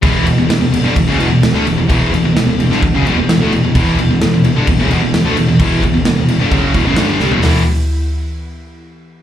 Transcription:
<<
  \new Staff \with { instrumentName = "Analog synth pad" } { \time 4/4 \key e \minor \tempo 4 = 130 <e b e'>1~ | <e b e'>1~ | <e b e'>1~ | <e b e'>1 |
<e b e'>8 r2. r8 | }
  \new Staff \with { instrumentName = "Distorted electric guitar" } { \clef bass \time 4/4 \key e \minor <e, b, e>8 <e, b,>16 <e, b,>16 <e, b,>16 <e, b,>16 <e, b,>16 <g, d>16 <e, b,>16 <fis, cis>16 <e, b,>16 <e, b,>16 <e, b,>16 <d a>16 <e, b,>16 <e, b,>16 | <e, b, e>8 <e, b,>16 <e, b,>16 <e, b,>16 <e, b,>16 <e, b,>16 <g, d>16 <e, b,>16 <fis, cis>16 <e, b,>16 <e, b,>16 <e, b,>16 <d a>16 <e, b,>16 <e, b,>16 | <e, b, e>8 <e, b,>16 <e, b,>16 <e, b,>16 <e, b,>16 <e, b,>16 <g, d>16 <e, b,>16 <fis, cis>16 <e, b,>16 <e, b,>16 <e, b,>16 <d a>16 <e, b,>16 <e, b,>16 | <e, b, e>8 <e, b,>16 <e, b,>16 <e, b,>16 <e, b,>16 <e, b,>16 <g, d>16 <fis, cis fis>8 <e, b,>16 <fis, cis>16 <g, d g>8 <c g>16 <e, b,>16 |
<e, b, e>8 r2. r8 | }
  \new Staff \with { instrumentName = "Distorted electric guitar" } { \clef bass \time 4/4 \key e \minor <e, b, e>8 <e, b,>16 <e, b,>16 <e, b,>16 <e, b,>16 <e, b,>16 <g, d>16 <e, b,>16 <fis, cis>16 <e, b,>16 <e, b,>16 <e, b,>16 <d a>16 <e, b,>16 <e, b,>16 | <e, b, e>8 <e, b,>16 <e, b,>16 <e, b,>16 <e, b,>16 <e, b,>16 <g, d>16 <e, b,>16 <fis, cis>16 <e, b,>16 <e, b,>16 <e, b,>16 <d a>16 <e, b,>16 <e, b,>16 | <e, b, e>8 <e, b,>16 <e, b,>16 <e, b,>16 <e, b,>16 <e, b,>16 <g, d>16 <e, b,>16 <fis, cis>16 <e, b,>16 <e, b,>16 <e, b,>16 <d a>16 <e, b,>16 <e, b,>16 | <e, b, e>8 <e, b,>16 <e, b,>16 <e, b,>16 <e, b,>16 <e, b,>16 <g, d>16 <fis, cis fis>8 <e, b,>16 <fis, cis>16 <g, d g>8 <c g>16 <e, b,>16 |
<e, b, e>8 r2. r8 | }
  \new Staff \with { instrumentName = "Distorted electric guitar" } { \clef bass \time 4/4 \key e \minor <e, b, e>8 <e, b,>16 <e, b,>16 <e, b,>16 <e, b,>16 <e, b,>16 <g, d>16 <e, b,>16 <fis, cis>16 <e, b,>16 <e, b,>16 <e, b,>16 <d a>16 <e, b,>16 <e, b,>16 | <e, b, e>8 <e, b,>16 <e, b,>16 <e, b,>16 <e, b,>16 <e, b,>16 <g, d>16 <e, b,>16 <fis, cis>16 <e, b,>16 <e, b,>16 <e, b,>16 <d a>16 <e, b,>16 <e, b,>16 | <e, b, e>8 <e, b,>16 <e, b,>16 <e, b,>16 <e, b,>16 <e, b,>16 <g, d>16 <e, b,>16 <fis, cis>16 <e, b,>16 <e, b,>16 <e, b,>16 <d a>16 <e, b,>16 <e, b,>16 | <e, b, e>8 <e, b,>16 <e, b,>16 <e, b,>16 <e, b,>16 <e, b,>16 <g, d>16 <fis, cis fis>8 <e, b,>16 <fis, cis>16 <g, d g>8 <c g>16 <e, b,>16 |
<e, b, e>8 r2. r8 | }
  \new Staff \with { instrumentName = "Picked electric bass" } { \clef bass \time 4/4 \key e \minor e,,8 e,,16 e,,16 e,,16 e,,16 e,,16 g,,16 e,,16 fis,,16 e,,16 e,,16 e,,16 d,16 e,,16 e,,16 | e,,8 e,,16 e,,16 e,,16 e,,16 e,,16 g,,16 e,,16 fis,,16 e,,16 e,,16 e,,16 d,16 e,,16 e,,16 | e,,8 e,,16 e,,16 e,,16 e,,16 e,,16 g,,16 e,,16 fis,,16 e,,16 e,,16 e,,16 d,16 e,,16 e,,16 | e,,8 e,,16 e,,16 e,,16 e,,16 e,,16 g,,16 fis,,8 e,,16 fis,,16 g,,8 c,16 e,,16 |
e,,8 r2. r8 | }
  \new DrumStaff \with { instrumentName = "Drums" } \drummode { \time 4/4 <cymc bd>8 cymc8 <cymc sn>8 cymc8 <cymc bd>8 cymc8 <cymc sn>8 cymc8 | <cymc bd>8 cymc8 <cymc sn>8 cymc16 sn16 <cymc bd>8 cymc8 <cymc sn>8 cymc8 | <cymc bd>8 cymc8 <cymc sn>8 cymc8 <cymc bd>8 cymc8 <cymc sn>8 cymc8 | <cymc bd>8 <cymc bd>8 <cymc sn>8 cymc8 <cymc bd>8 <cymc bd>8 <cymc sn>8 sn16 tomfh16 |
<hho sn tomfh>4 r4 r4 r4 | }
>>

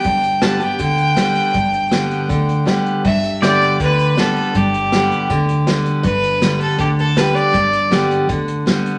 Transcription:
<<
  \new Staff \with { instrumentName = "Pedal steel guitar" } { \time 4/4 \key g \major \tempo 4 = 160 r1 | r1 | r4 <d'' g''>2.~ | <d'' g''>1~ |
<d'' g''>1~ | <d'' g''>1 | }
  \new Staff \with { instrumentName = "Fiddle" } { \time 4/4 \key g \major g''4 a''8 g''2~ g''8~ | g''2. r4 | e''4 d''4 b'4 a'4 | g'2. r4 |
b'4. a'8 g'8 a'8 b'8 d''8~ | d''4. r2 r8 | }
  \new Staff \with { instrumentName = "Steel-string acoustic guitar" } { \clef bass \time 4/4 \key g \major << { r4 <d g b g'>8 <b g'>8 r4 <d g b g'>4 | r4 <d g b g'>4 r4 <d g b g'>4 | r4 <d g b g'>4 r4 <d g b g'>4 | r4 <d g b g'>4 r4 <d g b g'>4 |
r4 <d g b g'>4 r4 <d g b g'>4 | r4 <d g b g'>4 r4 <d g b g'>4 | } \\ { g,2 d2 | g,2 d2 | g,2 d2 | g,2 d2 |
g,2 d2 | g,2 d2 | } >> }
  \new Staff \with { instrumentName = "Upright bass" } { \clef bass \time 4/4 \key g \major g,,2 d,2 | g,,2 d,2 | g,,2 d,2 | g,,2 d,2 |
g,,2 d,2 | g,,2 d,2 | }
  \new DrumStaff \with { instrumentName = "Drums" } \drummode { \time 4/4 <hh bd>8 hh8 <hh sn>8 hh8 <hh bd>8 hh8 <hh sn>8 hh8 | <hh bd>8 hh8 <hh sn>8 hh8 <hh bd>8 hh8 <hh sn>8 hh8 | <hh bd>8 hh8 <hh sn>8 hh8 <hh bd>8 hh8 <hh sn>8 hh8 | <hh bd>8 hh8 <hh sn>8 hh8 <hh bd>8 hh8 <hh sn>8 hh8 |
<hh bd>8 hh8 <hh sn>8 hh8 <hh bd>8 hh8 <hh sn>8 hh8 | <hh bd>8 hh8 <hh sn>8 hh8 <hh bd>8 hh8 <hh sn>8 hh8 | }
>>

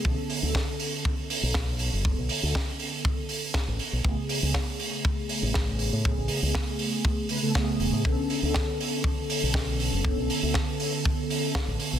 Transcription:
<<
  \new Staff \with { instrumentName = "Analog polysynth" } { \time 4/4 \key b \dorian \tempo 4 = 120 <d b cis' a'>8. <d b cis' a'>2.~ <d b cis' a'>16 | <d b cis' a'>8. <d b cis' a'>2.~ <d b cis' a'>16 | <cis a b gis'>8. <cis a b gis'>2.~ <cis a b gis'>16 | <cis a b gis'>8. <cis a b gis'>4.~ <cis a b gis'>16 <cis a b b'>16 <cis a b a'>16 <cis a b gis'>4 |
<d b cis' a'>8. <d b cis' a'>2.~ <d b cis' a'>16 | <d b cis' a'>8. <d b cis' a'>2.~ <d b cis' a'>16 | }
  \new Staff \with { instrumentName = "Fingered electric bass" } { \clef bass \time 4/4 \key b \dorian b,,16 r8 d,16 r4. r16 b,,4 fis,,16~ | fis,,16 b,,16 r16 d,16 r2 r16 a,,16 r16 b,,16 | a,,16 r8 cis,16 r4. r16 a,,4 a,16~ | a,16 a,,16 r16 cis,16 r2 r8 e,,16 a,16 |
b,,16 r8 d,16 r4. r16 b,,4 fis,,16~ | fis,,16 b,,16 r16 d,16 r2 r16 a,,16 r16 b,,16 | }
  \new DrumStaff \with { instrumentName = "Drums" } \drummode { \time 4/4 bd8 hho8 <bd sn>8 hho8 bd8 hho8 <bd sn>8 hho8 | bd8 hho8 <bd sn>8 hho8 bd8 hho8 <bd sn>8 hho8 | bd8 hho8 <bd sn>8 hho8 bd8 hho8 <bd sn>8 hho8 | bd8 hho8 <bd sn>8 hho8 bd8 hho8 <bd sn>8 hho8 |
bd8 hho8 <bd sn>8 hho8 bd8 hho8 <bd sn>8 hho8 | bd8 hho8 <bd sn>8 hho8 bd8 hho8 <bd sn>8 hho8 | }
>>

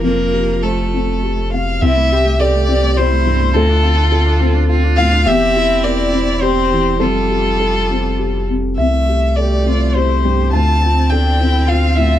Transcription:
<<
  \new Staff \with { instrumentName = "Violin" } { \time 3/4 \key c \major \tempo 4 = 104 bes'4 a'4. f''8 | e''4 d''4 c''4 | a'2 r8 f''8 | e''4 d''4 c''4 |
a'2~ a'8 r8 | e''4 d''4 c''4 | a''4 g''4 f''8 e''8 | }
  \new Staff \with { instrumentName = "Felt piano" } { \time 3/4 \key c \major << { r2 r8 f''8 | e''4 d''4 c''4 | a'2 r8 f''8 | e''4 d''4 c''4 |
a'2~ a'8 r8 | e''4 d''4 c''4 | a''4 g''4 f''8 e''8 | } \\ { f,8 g'8 c''8 c'8 g'8 c8 | c,8 g'8 a'8 c'8 g'8 g,8 | d,8 f'8 a'8 c'8 f'8 a,8 | e,8 g'8 bes'8 c'8 g'8 e8 |
f,8 g'8 a'8 c'8 g'8 c8 | c,8 g'8 a'8 c'8 g'8 g,8 | d,8 f'8 a'8 c'8 f'8 a,8 | } >> }
  \new Staff \with { instrumentName = "Cello" } { \time 3/4 \key c \major bes4 a4. r8 | e'8 g'8 g'4 e'4 | f'2 f'4 | g'8 e'4. g'4 |
f'2~ f'8 r8 | r4 g'8 f'8 e'8 g'8 | f'8 c'8 d'8 e'8 f'4 | }
  \new Staff \with { instrumentName = "Viola" } { \time 3/4 \key c \major f2~ f8 r8 | c'16 a16 c'16 a16 c'16 a16 c'16 a16 c'16 a16 c'16 a16 | c'16 d'16 c'16 d'16 c'16 d'16 c'16 d'16 c'16 d'16 c'16 d'16 | c'2 c'4 |
g2~ g8. r16 | a2. | c'2. | }
  \new Staff \with { instrumentName = "Sub bass" } { \clef bass \time 3/4 \key c \major f,,2. | c,2. | d,2. | e,,2. |
f,,2. | c,2. | d,2. | }
>>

